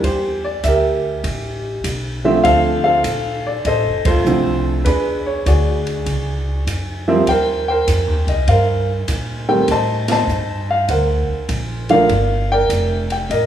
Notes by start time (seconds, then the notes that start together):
0.03 E2 G4 C5, kick, ride
0.44 D5
0.63 D2 G4 A#4 E5, kick, hi-hat pedal, ride
1.24 A1, kick, ride
1.84 B1, kick, hi-hat pedal, ride
2.24 D3 F3 A3 C4 E5
2.44 D2 A4 C5 F5, kick, ride
2.84 A4 C5 F5
3.04 A#1, kick, hi-hat pedal, ride
3.47 D5
3.65 A1 A4 C5 D#5, kick, ride
3.85 F1
4.05 D1 F4 A4 C5, kick, ride
4.25 C2 D3 F3 A3 C4, hi-hat pedal
4.85 E2 D4 G#4 B4, kick, ride
5.26 C#5
5.46 D2 F#4 G#4 D5, kick, hi-hat pedal, ride
5.87 ride
6.06 C#2, kick, ride
6.67 F#2, kick, hi-hat pedal, ride
7.08 F3 G3 A#3 C4 E5
7.27 D#2 A#4 C5 G5, kick, ride
7.68 A#4 C5 G5
7.87 F2, kick, hi-hat pedal, ride
8.07 D#2
8.27 C2 D#5, ride
8.48 G2 A#4 C5 F5, kick, ride
9.08 A#2, kick, hi-hat pedal, ride
9.48 D#3 G3 A3 C4 G5
9.68 A2 D#5 A5, kick, ride
9.72 C5
10.08 C5 D#5 A5, snare, ride
10.27 G2, hi-hat pedal
10.71 F5
10.88 D2 A#4 C5 F#5, kick, ride
11.28 muted upright bass stroke
11.49 A#1, kick, hi-hat pedal, ride
11.89 D3 F3 A3 A#3 A#4 D5 F5, ride
12.09 G1, kick, ride
12.52 A#4 D5 G5
12.69 F1, kick, hi-hat pedal, ride
13.10 G5, ride
13.29 A1 A#4 D#5, kick, ride